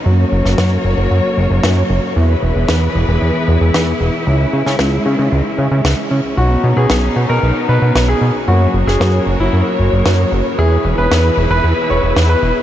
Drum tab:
SD |---oo-------o---|----o-------o---|---oo-------o---|----o-------o---|

SD |---oo-------o---|----o-------o---|